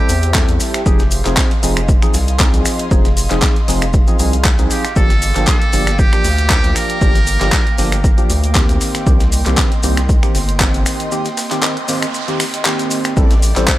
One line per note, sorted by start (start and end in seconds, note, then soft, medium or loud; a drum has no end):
0.00 0.12 G3 medium
0.00 0.12 C4 medium
0.00 0.12 E4 medium
0.00 0.57 G4 medium
0.00 0.82 G4 medium
0.00 0.12 A4 medium
0.00 0.82 C5 medium
0.00 0.82 E5 medium
0.00 0.84 G5 loud
0.09 0.45 E2 medium
0.09 open hi-hat loud
0.09 maracas medium
0.09 shaker medium
0.22 closed hi-hat medium
0.22 maracas soft
0.34 0.83 G3 medium
0.34 0.83 C4 medium
0.34 0.83 E4 medium
0.34 0.83 A4 loud
0.34 kick loud
0.34 snare loud
0.34 clap loud
0.34 maracas medium
0.34 shaker medium
0.48 0.59 E2 loud
0.48 closed hi-hat medium
0.48 maracas soft
0.60 snare soft
0.60 open hi-hat loud
0.60 maracas loud
0.60 shaker medium
0.74 finger snap medium
0.74 snare soft
0.74 closed hi-hat medium
0.74 maracas soft
0.86 1.22 F1 loud
0.86 1.02 F3 medium
0.86 1.03 C4 medium
0.86 1.03 D#4 medium
0.86 4.92 G#4 medium
0.86 1.03 G#4 loud
0.86 4.92 D#5 medium
0.86 8.77 F5 medium
0.86 4.92 C6 medium
0.86 kick loud
0.86 shaker medium
0.86 maracas medium
0.99 snare soft
0.99 closed hi-hat soft
0.99 maracas soft
1.11 open hi-hat loud
1.11 maracas loud
1.11 shaker medium
1.25 1.36 F1 loud
1.25 1.51 F3 medium
1.25 1.51 C4 medium
1.25 1.51 D#4 medium
1.25 1.51 G#4 loud
1.25 clap soft
1.25 closed hi-hat medium
1.25 maracas soft
1.37 kick loud
1.37 snare loud
1.37 clap loud
1.37 shaker medium
1.37 maracas medium
1.51 closed hi-hat soft
1.63 1.99 F1 loud
1.63 1.79 F3 medium
1.63 1.79 C4 medium
1.63 1.80 D#4 medium
1.63 1.80 G#4 loud
1.63 open hi-hat loud
1.63 shaker medium
1.63 maracas loud
1.77 finger snap medium
1.77 closed hi-hat medium
1.77 maracas soft
1.89 kick loud
1.89 shaker medium
1.89 maracas medium
2.02 2.17 F3 medium
2.02 2.17 C4 medium
2.02 2.18 D#4 medium
2.02 2.18 G#4 medium
2.02 finger snap medium
2.02 closed hi-hat soft
2.02 maracas soft
2.14 2.50 C2 medium
2.14 snare medium
2.14 open hi-hat loud
2.14 maracas medium
2.14 shaker medium
2.28 closed hi-hat medium
2.28 maracas soft
2.39 2.88 F3 medium
2.39 2.88 C4 medium
2.39 2.88 D#4 medium
2.39 2.89 G#4 loud
2.39 kick loud
2.39 snare loud
2.39 clap loud
2.39 maracas soft
2.39 shaker medium
2.54 2.64 C2 loud
2.54 closed hi-hat medium
2.54 maracas soft
2.66 finger snap medium
2.66 snare medium
2.66 open hi-hat loud
2.66 shaker medium
2.66 maracas loud
2.79 closed hi-hat medium
2.79 maracas soft
2.91 3.27 F1 loud
2.91 3.08 F3 medium
2.91 3.08 C4 medium
2.91 3.08 D#4 medium
2.91 3.08 G#4 loud
2.91 kick loud
2.91 shaker medium
2.91 maracas soft
3.05 snare soft
3.05 closed hi-hat soft
3.05 maracas soft
3.17 open hi-hat loud
3.17 shaker medium
3.17 maracas medium
3.30 3.41 F1 loud
3.30 3.56 F3 medium
3.30 3.56 C4 medium
3.30 3.56 D#4 medium
3.30 3.56 G#4 medium
3.30 snare medium
3.30 clap soft
3.30 closed hi-hat medium
3.30 maracas soft
3.42 kick loud
3.42 snare loud
3.42 clap loud
3.42 shaker medium
3.42 maracas medium
3.56 closed hi-hat soft
3.68 4.04 F1 medium
3.68 3.85 F3 loud
3.68 3.85 C4 medium
3.68 3.85 D#4 medium
3.68 3.85 G#4 loud
3.68 open hi-hat medium
3.68 open hi-hat loud
3.68 maracas loud
3.81 finger snap medium
3.81 closed hi-hat medium
3.81 maracas soft
3.93 kick loud
3.93 maracas medium
3.93 shaker medium
4.07 4.17 F3 medium
4.07 4.17 C4 medium
4.07 4.17 D#4 medium
4.07 4.17 G#4 medium
4.07 closed hi-hat soft
4.07 maracas soft
4.19 4.55 C2 medium
4.19 4.36 F3 medium
4.19 4.36 C4 medium
4.19 4.36 D#4 medium
4.19 4.36 G#4 medium
4.19 open hi-hat loud
4.19 maracas medium
4.19 shaker medium
4.33 closed hi-hat medium
4.33 maracas soft
4.45 kick loud
4.45 snare loud
4.45 clap loud
4.45 maracas medium
4.45 shaker medium
4.59 4.69 C2 loud
4.59 4.84 F3 medium
4.59 4.84 C4 medium
4.59 4.84 D#4 medium
4.59 4.84 G#4 medium
4.59 closed hi-hat medium
4.59 maracas soft
4.71 4.95 G4 medium
4.71 snare soft
4.71 open hi-hat loud
4.71 shaker medium
4.71 maracas loud
4.85 finger snap medium
4.85 snare soft
4.85 closed hi-hat medium
4.85 maracas soft
4.96 5.32 G1 loud
4.96 5.13 F3 medium
4.96 5.13 A#3 medium
4.96 13.13 A#3 medium
4.96 5.13 D4 medium
4.96 5.13 G4 loud
4.96 5.44 A4 loud
4.96 13.13 G5 medium
4.96 8.77 D6 loud
4.96 kick loud
4.96 maracas soft
4.96 shaker medium
5.10 snare soft
5.10 closed hi-hat soft
5.10 maracas soft
5.22 open hi-hat loud
5.22 shaker medium
5.22 maracas medium
5.35 5.46 G1 loud
5.35 5.61 F3 medium
5.35 5.61 A#3 medium
5.35 5.61 D4 medium
5.35 5.61 G4 medium
5.35 clap soft
5.35 closed hi-hat medium
5.35 maracas soft
5.47 6.00 A4 loud
5.47 kick loud
5.47 snare loud
5.47 clap loud
5.47 shaker medium
5.47 maracas medium
5.62 closed hi-hat soft
5.73 6.09 G1 loud
5.73 5.90 F3 loud
5.73 5.90 A#3 medium
5.73 5.90 D4 medium
5.73 5.90 G4 loud
5.73 open hi-hat loud
5.73 maracas medium
5.73 shaker medium
5.87 finger snap medium
5.87 snare soft
5.87 closed hi-hat medium
5.87 maracas soft
5.99 6.77 G4 loud
5.99 kick loud
5.99 maracas soft
5.99 shaker medium
6.12 6.28 F3 medium
6.12 6.28 A#3 medium
6.12 6.28 D4 medium
6.12 6.28 G4 medium
6.12 finger snap medium
6.12 closed hi-hat soft
6.12 maracas soft
6.24 6.61 D2 medium
6.24 snare medium
6.24 open hi-hat loud
6.24 maracas loud
6.24 shaker medium
6.38 closed hi-hat medium
6.38 maracas soft
6.50 6.99 F3 medium
6.50 6.99 A#3 medium
6.50 6.99 D4 medium
6.50 6.99 G4 loud
6.50 kick loud
6.50 snare loud
6.50 clap loud
6.50 shaker medium
6.50 maracas medium
6.64 6.74 D2 loud
6.64 closed hi-hat medium
6.64 maracas soft
6.76 8.30 A#4 loud
6.76 finger snap medium
6.76 snare medium
6.76 open hi-hat loud
6.76 shaker medium
6.76 maracas medium
6.90 closed hi-hat medium
6.90 maracas soft
7.01 7.38 G1 loud
7.01 7.18 F3 medium
7.01 7.18 A#3 medium
7.01 7.18 D4 medium
7.01 7.18 G4 loud
7.01 kick loud
7.01 shaker medium
7.01 maracas medium
7.15 snare soft
7.15 closed hi-hat medium
7.15 maracas soft
7.27 open hi-hat loud
7.27 maracas medium
7.27 shaker medium
7.41 7.51 G1 loud
7.41 7.66 F3 medium
7.41 7.66 A#3 medium
7.41 7.66 D4 medium
7.41 7.66 G4 loud
7.41 snare medium
7.41 clap soft
7.41 closed hi-hat medium
7.41 maracas soft
7.52 kick loud
7.52 snare loud
7.52 clap loud
7.52 shaker medium
7.52 maracas soft
7.67 closed hi-hat soft
7.78 8.14 G1 loud
7.78 7.95 F3 medium
7.78 7.95 A#3 medium
7.78 7.95 D4 medium
7.78 7.95 G4 loud
7.78 open hi-hat medium
7.78 open hi-hat loud
7.78 maracas medium
7.92 finger snap medium
7.92 closed hi-hat medium
7.92 maracas soft
8.04 kick loud
8.04 shaker medium
8.04 maracas medium
8.18 8.33 F3 medium
8.18 8.33 A#3 medium
8.18 8.33 D4 medium
8.18 8.33 G4 medium
8.18 closed hi-hat soft
8.18 maracas soft
8.30 8.66 D2 medium
8.30 open hi-hat loud
8.30 shaker medium
8.30 maracas medium
8.44 closed hi-hat medium
8.44 maracas soft
8.55 9.04 D#3 medium
8.55 9.04 A#3 medium
8.55 9.04 C4 medium
8.55 9.04 G4 loud
8.55 kick loud
8.55 snare loud
8.55 clap loud
8.55 shaker medium
8.55 maracas medium
8.69 8.79 D2 loud
8.69 closed hi-hat medium
8.69 maracas soft
8.81 13.13 D#5 medium
8.81 13.13 C6 loud
8.81 snare medium
8.81 open hi-hat loud
8.81 shaker medium
8.81 maracas loud
8.95 finger snap medium
8.95 snare soft
8.95 closed hi-hat medium
8.95 maracas soft
9.06 9.43 C2 medium
9.06 9.23 D#3 medium
9.06 9.23 A#3 medium
9.06 9.23 C4 medium
9.06 9.23 G4 loud
9.06 kick loud
9.06 shaker medium
9.06 maracas soft
9.20 snare soft
9.20 closed hi-hat medium
9.20 maracas soft
9.32 open hi-hat loud
9.32 shaker medium
9.32 maracas medium
9.46 9.56 C2 loud
9.46 9.71 D#3 medium
9.46 9.71 A#3 medium
9.46 9.71 C4 medium
9.46 9.71 G4 loud
9.46 clap soft
9.46 closed hi-hat medium
9.46 maracas soft
9.57 kick loud
9.57 snare loud
9.57 clap loud
9.57 shaker medium
9.57 maracas medium
9.72 closed hi-hat soft
9.83 10.20 C2 loud
9.83 10.00 D#3 loud
9.83 10.00 A#3 medium
9.83 10.00 C4 medium
9.83 10.00 G4 loud
9.83 open hi-hat loud
9.83 maracas medium
9.83 shaker medium
9.97 finger snap medium
9.97 snare soft
9.97 closed hi-hat medium
9.97 maracas soft
10.09 kick loud
10.09 shaker medium
10.09 maracas medium
10.23 10.38 D#3 medium
10.23 10.38 A#3 medium
10.23 10.38 C4 medium
10.23 10.38 G4 medium
10.23 finger snap medium
10.23 closed hi-hat soft
10.23 maracas soft
10.35 10.71 G1 medium
10.35 snare medium
10.35 open hi-hat loud
10.35 shaker medium
10.35 maracas medium
10.49 closed hi-hat medium
10.49 maracas soft
10.60 11.09 D#3 medium
10.60 11.09 A#3 medium
10.60 11.09 C4 medium
10.60 11.09 G4 loud
10.60 kick loud
10.60 snare loud
10.60 clap loud
10.60 shaker medium
10.60 maracas soft
10.74 10.84 G1 loud
10.74 closed hi-hat medium
10.74 maracas soft
10.86 finger snap medium
10.86 snare medium
10.86 open hi-hat loud
10.86 maracas medium
10.86 shaker medium
11.00 closed hi-hat medium
11.00 maracas soft
11.11 11.28 D#3 medium
11.11 11.28 A#3 medium
11.11 11.28 C4 medium
11.11 11.28 G4 loud
11.11 noise sweep medium
11.11 maracas soft
11.11 shaker medium
11.25 snare soft
11.25 closed hi-hat medium
11.25 maracas soft
11.37 snare loud
11.37 open hi-hat loud
11.37 shaker medium
11.37 maracas medium
11.51 11.76 D#3 medium
11.51 11.76 A#3 medium
11.51 11.76 C4 medium
11.51 11.77 G4 loud
11.51 snare medium
11.51 clap soft
11.51 closed hi-hat medium
11.51 maracas soft
11.63 snare loud
11.63 clap loud
11.63 maracas soft
11.63 shaker medium
11.77 closed hi-hat soft
11.88 12.05 D#3 loud
11.88 12.05 A#3 medium
11.88 12.05 C4 medium
11.88 12.05 G4 loud
11.88 open hi-hat loud
11.88 open hi-hat medium
11.88 maracas medium
12.02 finger snap medium
12.02 closed hi-hat medium
12.02 maracas soft
12.14 shaker medium
12.14 maracas medium
12.28 12.43 D#3 medium
12.28 12.43 A#3 medium
12.28 12.43 C4 medium
12.28 12.43 G4 loud
12.28 snare soft
12.28 closed hi-hat soft
12.28 maracas soft
12.40 finger snap medium
12.40 snare loud
12.40 open hi-hat loud
12.40 shaker medium
12.40 maracas medium
12.54 closed hi-hat medium
12.54 closed hi-hat soft
12.54 maracas soft
12.65 13.14 D#3 medium
12.65 13.14 A#3 medium
12.65 13.14 C4 medium
12.65 13.14 G4 loud
12.65 snare loud
12.65 clap loud
12.65 maracas soft
12.65 shaker medium
12.79 closed hi-hat medium
12.79 maracas soft
12.91 snare soft
12.91 open hi-hat loud
12.91 maracas medium
12.91 shaker medium
13.04 finger snap medium
13.04 snare soft
13.04 closed hi-hat medium
13.04 maracas soft
13.17 13.53 A1 loud
13.17 13.33 G3 medium
13.17 13.33 C4 medium
13.17 13.33 E4 medium
13.17 13.78 A4 medium
13.17 13.34 A4 loud
13.17 13.78 D5 medium
13.17 13.78 E5 medium
13.17 13.78 G5 medium
13.17 13.78 C6 loud
13.17 13.78 D6 medium
13.17 kick loud
13.17 maracas medium
13.17 shaker medium
13.31 snare medium
13.31 closed hi-hat medium
13.31 maracas soft
13.42 open hi-hat loud
13.42 shaker medium
13.42 maracas medium
13.56 13.66 A1 loud
13.56 13.78 G3 medium
13.56 13.78 C4 medium
13.56 13.78 E4 medium
13.56 13.78 A4 loud
13.56 13.64 C5 medium
13.56 clap soft
13.56 closed hi-hat medium
13.56 maracas soft
13.67 13.77 C5 medium
13.67 kick loud
13.67 snare loud
13.67 clap loud
13.67 maracas medium
13.67 shaker medium